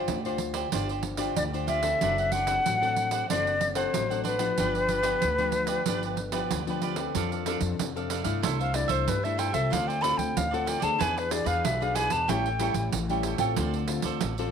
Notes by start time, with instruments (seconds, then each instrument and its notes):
Already playing: nylon-string guitar D4 F4 C5, cavaquinho G4 C5 D5
0.08 upright bass D2, nylon-string guitar D3, pandeiro
0.25 nylon-string guitar D4 F4 C5, cavaquinho G4 C5 D5, pandeiro
0.38 muted cavaquinho stroke, pandeiro
0.54 cavaquinho G4 C5 D5, pandeiro
0.72 upright bass G1, nylon-string guitar G3 D4 F4 C5, cavaquinho F4 G4 C5 D5, pandeiro
0.89 cavaquinho G4 C5 D5, pandeiro
1.03 muted cavaquinho stroke, pandeiro
1.17 nylon-string guitar D4 F4 C5, cavaquinho G4 C5 D5, pandeiro
1.36 upright bass D2, nylon-string guitar D3, flute D5, pandeiro
1.53 nylon-string guitar D4 F4 C5, cavaquinho G4 C5 D5, pandeiro
1.67 cavaquinho F4 G4 C5 D5, flute E5, pandeiro
1.82 nylon-string guitar C4 D4 A4, cavaquinho G4 C5 D5, pandeiro
2.01 upright bass F#1, nylon-string guitar F#3, cavaquinho D4 C5 D5 F#5, pandeiro
2.18 cavaquinho C5 D5 F#5, pandeiro
2.32 cavaquinho D4 C5 D5 F#5, flute F#5, pandeiro
2.47 nylon-string guitar C4 D4 A4, cavaquinho C5 D5 F#5, pandeiro
2.65 upright bass A1, nylon-string guitar F#3, pandeiro
2.81 nylon-string guitar C4 D4 A4, cavaquinho C5 D5 F#5, pandeiro
2.96 muted cavaquinho stroke, pandeiro
3.11 cavaquinho C5 D5 F#5, pandeiro
3.29 upright bass F#1, nylon-string guitar F#3 C4 D4 A4, cavaquinho D4 C5 D5 F#5, flute D5, pandeiro
3.47 cavaquinho C5 D5 F#5, pandeiro
3.61 muted cavaquinho stroke, pandeiro
3.75 nylon-string guitar C4 D4 A4, flute C5, cavaquinho C5 D5 F#5, pandeiro
3.93 upright bass A1, nylon-string guitar F#3, pandeiro
4.10 nylon-string guitar C4 D4 A4, cavaquinho C5 D5 F#5, pandeiro
4.24 cavaquinho D4 C5 D5 F#5, flute B4, pandeiro
4.39 nylon-string guitar F3 B3 D4, cavaquinho C5 D5 F#5, pandeiro
4.57 upright bass G1, nylon-string guitar G2, cavaquinho F4 G4 B4 D5, pandeiro
4.75 cavaquinho G4 B4 D5, pandeiro
4.88 cavaquinho F4 G4 B4 D5, pandeiro
5.03 nylon-string guitar F3 B3 D4, cavaquinho G4 B4 D5, pandeiro
5.21 upright bass D2, nylon-string guitar D3, pandeiro
5.38 nylon-string guitar F3 B3 D4, cavaquinho G4 B4 D5, pandeiro
5.52 muted cavaquinho stroke, pandeiro
5.67 cavaquinho G4 B4 D5, pandeiro
5.86 upright bass G1, nylon-string guitar G2 F3 B3 D4, cavaquinho F4 G4 B4 D5, pandeiro
6.03 cavaquinho G4 B4 D5, pandeiro
6.17 muted cavaquinho stroke, pandeiro
6.32 nylon-string guitar F3 B3 D4, cavaquinho G4 B4 D5, pandeiro
6.50 upright bass D2, nylon-string guitar D3, pandeiro
6.67 nylon-string guitar F3 B3 D4, cavaquinho G4 B4 D5, pandeiro
6.82 cavaquinho F4 G4 B4 D5, pandeiro
6.96 nylon-string guitar C4 D4 A4, cavaquinho G4 B4 D5, pandeiro
7.14 upright bass F2, nylon-string guitar F3, cavaquinho D4 A4 D5 F5, pandeiro
7.32 cavaquinho A4 D5 F5, pandeiro
7.46 nylon-string guitar C4 D4 A4, cavaquinho D4 A4 D5 F5, pandeiro
7.61 upright bass F2, muted cavaquinho stroke, pandeiro
7.79 upright bass F2, nylon-string guitar C3, pandeiro
7.96 nylon-string guitar C4 D4 A4, cavaquinho A4 D5 F5, pandeiro
8.10 cavaquinho D4 A4 D5 F5, pandeiro
8.24 upright bass G2, nylon-string guitar A3 D4 E4, cavaquinho A4 D5 F5, pandeiro
8.42 upright bass C2, nylon-string guitar C3, cavaquinho E4 A4 C5 E5, pandeiro
8.59 cavaquinho A4 C5 E5, flute F5, pandeiro
8.73 nylon-string guitar A3 D4 E4, flute D5, muted cavaquinho stroke, pandeiro
8.88 upright bass C2, cavaquinho A4 C5 E5, flute C5, pandeiro
9.08 upright bass G2, nylon-string guitar G3, flute B4, pandeiro
9.23 nylon-string guitar A3 D4 E4, cavaquinho A4 C5 E5, flute E5, pandeiro
9.38 cavaquinho E4 A4 C5 E5, flute G5, pandeiro
9.52 upright bass C2, nylon-string guitar C4 F4 A4, cavaquinho A4 C5 E5, flute E5, pandeiro
9.70 upright bass D2, nylon-string guitar D3, cavaquinho F4 A4 C5 D5, flute F5, pandeiro
9.88 cavaquinho A4 C5 D5, flute G5, pandeiro
10.01 nylon-string guitar C4 F4 A4, cavaquinho F4 A4 C5 D5, flute B5, pandeiro
10.16 upright bass D2, flute G5, muted cavaquinho stroke, pandeiro
10.36 upright bass D2, nylon-string guitar A2, flute F5, pandeiro
10.51 nylon-string guitar C4 F4 A4, cavaquinho A4 C5 D5, flute F#5, pandeiro
10.66 cavaquinho F4 A4 C5 D5, flute G5, pandeiro
10.80 upright bass D2, nylon-string guitar B3 D4 G#4, cavaquinho A4 C5 D5, flute A5, pandeiro
10.99 upright bass E2, nylon-string guitar E3, cavaquinho E4 G#4 B4 D5, flute G#5, pandeiro
11.16 cavaquinho G#4 B4 D5, flute B4, pandeiro
11.29 nylon-string guitar B3 D4 G#4, flute D5, muted cavaquinho stroke, pandeiro
11.44 upright bass E2, cavaquinho G#4 B4 D5, flute F5, pandeiro
11.64 upright bass B1, nylon-string guitar B2, flute E5, pandeiro
11.80 nylon-string guitar B3 D4 G#4, cavaquinho G#4 B4 D5, flute F5, pandeiro
11.95 cavaquinho E4 G#4 B4 D5, flute G#5, pandeiro
12.10 upright bass E2, cavaquinho G#4 B4 D5, flute A5, pandeiro
12.28 upright bass A1, nylon-string guitar A2 G3 C#4 E4, cavaquinho G4 A4 C#5 G5, flute G5, pandeiro
12.46 cavaquinho A4 C#5 G5, pandeiro
12.59 nylon-string guitar G3 C#4 E4, cavaquinho G4 A4 C#5 G5, pandeiro
12.74 upright bass A1, muted cavaquinho stroke, pandeiro
12.93 upright bass A1, nylon-string guitar E3, pandeiro
13.09 nylon-string guitar G3 C#4 E4, cavaquinho A4 C#5 G5, pandeiro
13.23 cavaquinho G4 A4 C#5 G5, pandeiro
13.38 upright bass A1, nylon-string guitar C4 F4 A4, cavaquinho A4 C#5 G5, pandeiro
13.56 upright bass D2, nylon-string guitar D3, cavaquinho F4 A4 C5, pandeiro
13.60 cavaquinho D5
13.74 cavaquinho A4 C5 D5, pandeiro
13.88 nylon-string guitar C4 F4 A4, muted cavaquinho stroke, pandeiro
14.02 upright bass D2, cavaquinho A4 C5 D5, pandeiro
14.21 upright bass A1, nylon-string guitar A2, pandeiro
14.38 nylon-string guitar C4 F4 A4, cavaquinho A4 C5 D5, pandeiro